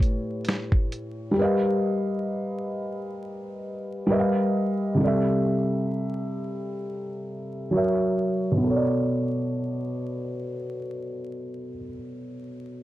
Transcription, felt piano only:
Already playing: A2 A3 G4 B4 C#5
1.31 G3 G4
1.36 A#4 B4
1.41 D#5 F5
4.07 G3 G4 A#4 B4
4.12 D#5 E5
4.19 F5
4.94 C3 G3
5.01 A4 D5
5.07 E5
7.71 F#3 F#4 A#4
7.76 C#5 E5
8.52 B2
8.57 B3
8.64 A4
8.70 C#5
8.76 D5

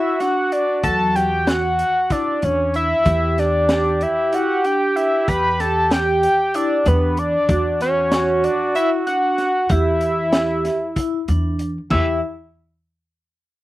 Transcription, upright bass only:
0.84 E2
2.43 E2
3.06 E2
5.28 E2
6.86 E2
7.49 E2
9.70 E2
11.28 E2
11.91 E2

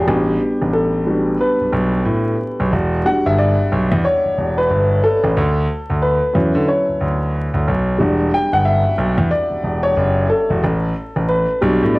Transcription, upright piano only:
Already playing: G4
0.07 G3 B3 D4 F#4
0.73 A4
1.06 G3 B3 D4 F#4
1.41 B4
3.05 G3 D4 F#4 F#5
3.26 E5
3.38 D5
4.05 C#5
4.58 B4
5.04 A4
6.02 B4
6.33 F#3 C#4 E4
6.68 C#5
7.98 G3 D4 F#4
8.34 G5
8.53 F#5
8.65 E5
9.31 D5
9.83 C#5
10.30 A4
11.29 B4
11.61 G3 B3 D4 F#4
11.95 D5

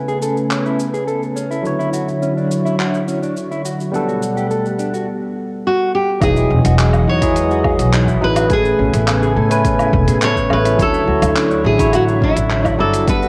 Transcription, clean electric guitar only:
0.08 G#4
0.22 A4
0.51 C#4
0.66 E4
0.94 G#4
1.07 A4
1.36 C#4
1.51 E4
1.79 E4
1.93 F#4
2.22 C#4
2.37 D4
2.65 E4
2.79 F#4
3.08 C#4
3.22 D4
3.51 E4
3.65 F#4
3.93 D4
4.08 F#4
4.37 G4
4.51 A4
4.79 D4
4.94 F#4
6.22 D#4
6.37 E4
6.65 F#4
6.79 G#4
7.07 D#4
7.22 E4
7.51 F#4
7.65 G#4
7.94 D#4
8.08 E4
8.37 F#4
8.51 A4
8.79 C#4
8.94 E4
9.23 G#4
9.36 A4
9.65 C#4
9.80 E4
10.08 G#4
10.22 A4
10.51 C#4
10.65 E4
10.94 E4
11.08 F#4
11.36 C#4
11.51 D4
11.80 E4
11.93 F#4
12.22 C#4
12.37 D4
12.65 E4
12.79 F#4
13.07 D4
13.22 F#4

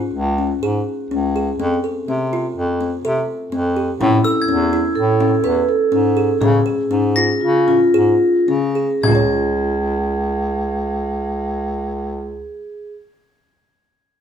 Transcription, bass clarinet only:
0.13 C#2
0.62 G#2
1.11 C#2
1.58 F2
2.07 C3
2.56 F2
3.04 C3
3.52 F2
4.00 A2
4.48 E2
4.97 A2
5.44 E2
5.93 G#2
6.41 C#3
6.91 G#2
7.42 C#3
7.94 G#2
8.49 C#3
9.03 C#2

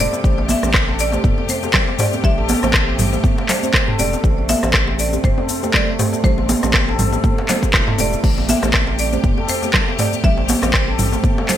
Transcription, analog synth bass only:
0.24 A1
0.63 A1
1.24 E1
2.24 A1
2.63 A1
3.99 E1
4.24 A1
4.63 A1
5.24 E1
6.24 A1
6.63 A1
7.74 E1
7.99 E1
8.24 A1
8.63 A1
9.24 E1
10.24 A1
10.63 A1

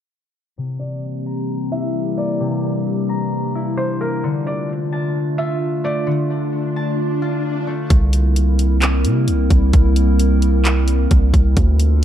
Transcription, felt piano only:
0.79 D5
1.72 E5
2.18 D5
3.77 C5
4.01 A#4
4.47 D5
5.38 E5
5.85 D5

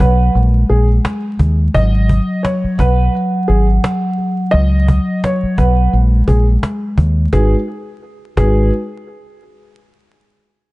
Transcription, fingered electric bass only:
0.00 B1
0.35 A#1
0.70 A#1
1.39 D#2
1.75 G#1
2.64 muted fingered electric bass stroke
2.79 B1
3.49 G#1
4.54 C#2
5.43 muted fingered electric bass stroke
5.58 B1
5.93 A#1
6.28 A#1
6.98 D#2
7.33 G#1
8.37 G#1

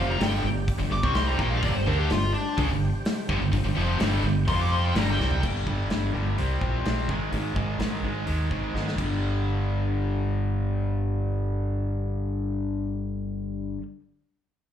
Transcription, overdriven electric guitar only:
Already playing: F2 C3 F3
0.18 G2 D3 G3
0.44 G2 D3
0.78 G2 D3
0.90 G2 D3
1.03 C3 G3 C4
1.38 A#2 F3 A#3
1.62 G2 D3
1.74 G2 D3
1.87 D3 A3 D4
2.10 G2 D3
2.58 C#3 G#3
2.69 G2 D3
3.29 G2 D3
3.41 G2 D3
3.53 G2 D3
3.66 G2 D3
3.77 F2 C3 F3
4.02 G2 D3 G3
4.26 G2 D3
4.49 F3 C4 F4
4.96 G2 D3 G3
5.19 C3 G3 C4
5.43 G2 D3 G3
5.67 G2 D3 G3
5.90 G2 D3 G3
6.14 G2 D3 G3
6.38 C3 G3 C4
6.61 C3 G3 C4
6.86 C3 G3 C4
7.09 G#2 D#3 G#3
7.32 G#2 D#3 G#3
7.56 G#2 D#3 G#3
7.79 G#2 D#3 G#3
8.04 G#2 D#3 G#3
8.27 G#2 D#3 G#3
8.51 G#2 D#3 G#3
8.75 G#2 D#3 G#3
8.96 G2 D3
9.01 G3

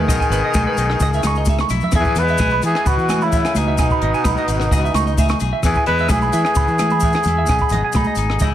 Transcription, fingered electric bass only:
0.08 B1
0.30 G#1
0.54 B1
0.77 B1
1.00 C#2
1.23 C#2
1.70 B1
1.93 E2
2.16 E2
2.39 B1
2.63 E3
2.85 C#2
2.97 E3
3.56 C#2
3.78 B1
4.02 G#1
4.24 B1
4.48 G#1
4.71 C#2
4.94 C#2
5.41 B1
5.62 E2
5.87 E2
6.09 B1
6.33 E3
6.55 C#2
6.68 E3
7.25 E2
7.49 B1
7.71 G#1
7.94 B1
8.16 G#1
8.40 C#2

